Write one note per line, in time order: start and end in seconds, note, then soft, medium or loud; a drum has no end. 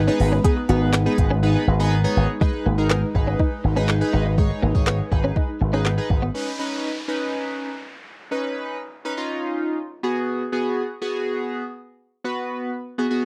0.00 2.37 G#3 medium
0.00 2.37 D#4 medium
0.00 2.37 B4 medium
0.07 0.30 B3 medium
0.07 0.17 C#4 medium
0.07 0.30 D#4 medium
0.07 0.30 G#4 medium
0.07 0.30 B4 loud
0.20 0.39 G#1 medium
0.20 muted clean electric guitar stroke soft
0.20 open hi-hat medium
0.32 0.42 C#4 medium
0.44 0.60 B3 medium
0.44 0.60 D#4 medium
0.44 0.54 G#4 medium
0.44 0.60 G#4 medium
0.44 0.60 B4 loud
0.44 kick loud
0.44 closed hi-hat medium
0.57 muted clean electric guitar stroke soft
0.69 1.06 G#1 loud
0.69 0.92 B3 medium
0.69 0.92 D#4 medium
0.69 0.79 F#4 medium
0.69 0.92 G#4 medium
0.69 0.92 B4 loud
0.69 closed hi-hat medium
0.93 1.04 D#4 medium
0.93 snare loud
0.93 clap loud
0.93 closed hi-hat loud
1.06 1.29 B3 medium
1.06 1.29 D#4 medium
1.06 1.29 G#4 medium
1.06 1.29 B4 loud
1.06 muted clean electric guitar stroke soft
1.18 1.55 G#1 medium
1.18 kick medium
1.18 closed hi-hat medium
1.31 1.40 C#4 medium
1.43 1.65 B3 medium
1.43 1.66 D#4 medium
1.43 1.66 G#4 medium
1.43 1.66 B4 loud
1.67 2.05 G#1 loud
1.80 1.95 B3 medium
1.80 1.95 D#4 medium
1.80 1.95 G#4 medium
1.80 1.95 B4 loud
2.04 2.27 B3 medium
2.04 2.27 D#4 medium
2.04 2.27 G#4 medium
2.04 2.27 C#5 medium
2.17 2.26 G#1 medium
2.41 2.51 G#3 medium
2.41 6.31 G#3 medium
2.41 2.64 D#4 medium
2.41 6.31 D#4 medium
2.41 2.64 G#4 medium
2.41 6.31 B4 medium
2.41 2.64 B4 medium
2.41 kick loud
2.54 muted clean electric guitar stroke soft
2.66 3.03 G#1 medium
2.66 2.76 A#3 medium
2.78 3.01 D#4 medium
2.78 3.01 G#4 medium
2.78 3.01 A#4 loud
2.90 3.00 B3 medium
2.90 snare loud
2.90 clap loud
3.15 3.34 G#1 loud
3.15 3.53 D#4 medium
3.15 3.53 G#4 medium
3.15 3.53 B4 medium
3.15 muted clean electric guitar stroke soft
3.15 kick medium
3.27 3.37 C#4 medium
3.39 3.49 D#4 medium
3.39 kick medium
3.64 4.01 G#1 medium
3.64 muted clean electric guitar stroke soft
3.76 3.86 C#4 medium
3.76 3.91 D#4 medium
3.76 3.92 G#4 medium
3.76 3.92 B4 loud
3.89 muted clean electric guitar stroke soft
3.89 snare medium
3.89 clap loud
4.01 4.24 D#4 medium
4.01 4.24 G#4 medium
4.01 4.24 B4 medium
4.13 4.51 G#1 medium
4.13 4.23 D#4 medium
4.26 4.35 D#4 medium
4.38 4.48 G#3 medium
4.38 4.61 D#4 medium
4.38 4.61 G#4 medium
4.38 4.61 C#5 medium
4.38 kick loud
4.50 muted clean electric guitar stroke soft
4.62 5.00 G#1 medium
4.62 4.72 A#3 medium
4.75 4.97 D#4 medium
4.75 4.97 G#4 medium
4.75 4.98 C#5 medium
4.75 kick medium
4.87 4.97 B3 medium
4.87 snare loud
4.87 clap loud
5.11 5.30 G#1 loud
5.11 5.49 D#4 medium
5.11 5.49 G#4 medium
5.11 5.50 B4 medium
5.11 muted clean electric guitar stroke soft
5.11 kick medium
5.24 5.34 C#4 medium
5.36 5.46 D#4 medium
5.36 kick medium
5.61 5.98 G#1 medium
5.61 muted clean electric guitar stroke soft
5.73 5.83 C#4 medium
5.73 5.88 D#4 medium
5.73 5.88 G#4 medium
5.73 5.88 B4 loud
5.85 5.95 B3 medium
5.85 snare medium
5.85 clap loud
5.98 6.20 D#4 medium
5.98 6.20 G#4 medium
5.98 6.21 B4 loud
6.10 6.29 G#1 medium
6.10 muted clean electric guitar stroke soft
6.10 kick medium
6.22 6.32 B3 medium
6.34 6.50 C#4 medium
6.34 6.50 D#4 medium
6.34 6.50 B4 medium
6.34 downlifter medium
6.59 6.89 C#4 medium
6.59 6.89 D#4 medium
6.59 6.90 B4 medium
7.08 7.69 C#4 medium
7.08 7.69 D#4 medium
7.08 7.69 B4 medium
8.31 8.77 C#4 medium
8.31 8.77 D#4 medium
8.31 8.77 B4 medium
9.05 9.13 C#4 medium
9.05 9.13 D#4 medium
9.05 9.13 B4 medium
9.17 9.78 C#4 medium
9.17 9.78 D#4 medium
9.17 9.78 F4 medium
10.03 10.43 B3 medium
10.03 10.43 F#4 medium
10.03 10.43 G#4 loud
10.52 10.83 B3 medium
10.52 10.83 F#4 medium
10.52 10.83 G#4 medium
11.01 11.62 B3 medium
11.01 11.62 F#4 medium
11.01 11.62 G#4 medium
12.24 12.70 B3 medium
12.24 12.70 F#4 medium
12.24 12.70 B4 medium
12.98 13.06 B3 medium
12.98 13.06 F#4 medium
12.98 13.06 G#4 medium
13.10 13.25 B3 medium
13.10 13.25 F#4 medium
13.10 13.25 G#4 medium